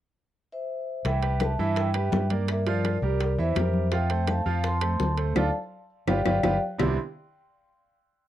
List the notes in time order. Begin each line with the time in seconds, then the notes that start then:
0.52 C5 E5
1.05 C2 E3 E4 E5 G5, high bongo, high conga, high timbale
1.22 G3 G4 B4, high conga, high timbale
1.40 E5 A5, high bongo, high conga, high timbale, claves
1.59 G2 E3 E4 E5, high conga
1.76 E5 G5, high bongo, high conga, high timbale
1.94 G3 G4 B4, high conga, high timbale, claves
2.12 G2, high bongo, low bongo, high conga, low timbale
2.30 A#3 A#4 D5, high conga, high timbale
2.48 A#4 E5, high bongo, high conga, high timbale, claves
2.66 F3 F4 A#4 D5 F5, high bongo, high conga, high timbale
2.84 high bongo, high conga, high timbale, claves
3.02 C2 G3 G4 A#4, high bongo, high conga
3.20 high bongo, high conga, high timbale
3.38 E2 E3 E4 C5 E5, high bongo, high conga
3.55 F2 G3 G4 A#4, high bongo, low bongo, high conga, high timbale, claves
3.73 high conga
3.92 F3 F4 E5 F5 G5, high bongo, high timbale
4.10 A3 A4 C5, high conga, high timbale
4.27 F5 A5, high bongo, high conga, high timbale, claves
4.46 F2 F3 F4 F5, high conga
4.64 A5 C6, high bongo, high conga, high timbale
4.81 A3 A4 C5, high conga, high timbale, claves
5.00 D2, high bongo, low bongo, high conga
5.17 A3 A4 C5, high timbale
5.36 D2 D4 F4 A4 D5 F5 A5, low bongo, high conga, high timbale, claves
6.07 G1 F4 G4 B4 D5 F5 G5, low bongo, high conga, high timbale, claves
6.25 G1 F4 G4 B4 D5 F5 G5, low bongo, high conga, high timbale, claves
6.43 G1 F4 G4 B4 D5 F5 G5, low bongo, high conga, high timbale, claves
6.78 C2 C3 G3 B3 C4 D4 E4 C6, low bongo, low conga, low timbale, claves